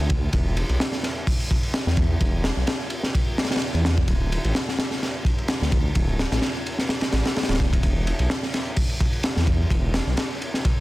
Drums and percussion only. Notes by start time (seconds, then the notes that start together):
0.10 kick, ride
0.33 kick, ride
0.57 ride
0.69 ride
0.80 snare, ride
0.92 snare
1.03 snare, ride
1.27 kick, open hi-hat
1.40 ride
1.51 kick, ride
1.63 ride
1.74 snare, ride
1.87 snare
1.97 kick, ride
2.21 kick, ride
2.44 snare, ride
2.67 snare, ride
2.90 ride
3.03 snare
3.15 kick, ride
3.38 snare, ride
3.45 snare, ride
3.51 snare, ride
3.56 snare, ride
3.62 ride
3.75 ride
3.85 snare, ride
3.98 kick
4.08 kick, ride
4.32 ride
4.44 ride
4.55 snare, ride
4.68 snare
4.79 snare, ride
4.91 snare
5.03 snare, ride
5.25 kick, ride
5.38 ride
5.48 snare, ride
5.62 snare
5.72 kick, ride
5.95 kick, ride
6.19 snare, ride
6.32 snare, ride
6.42 snare, ride
6.66 ride
6.79 snare
6.89 snare, ride
7.01 snare, ride
7.12 snare, ride
7.25 snare, ride
7.36 snare, ride
7.43 snare, ride
7.49 snare, ride
7.54 snare, ride
7.60 kick
7.73 kick, ride
7.83 kick, ride
8.07 ride
8.19 ride
8.30 snare, ride
8.43 snare
8.54 snare, ride
8.77 kick, open hi-hat
8.89 ride
9.00 kick, ride
9.13 ride
9.23 snare, ride
9.36 snare
9.47 kick, ride
9.70 kick, ride
9.94 snare, ride
10.17 snare, ride
10.42 ride
10.54 snare
10.65 kick, ride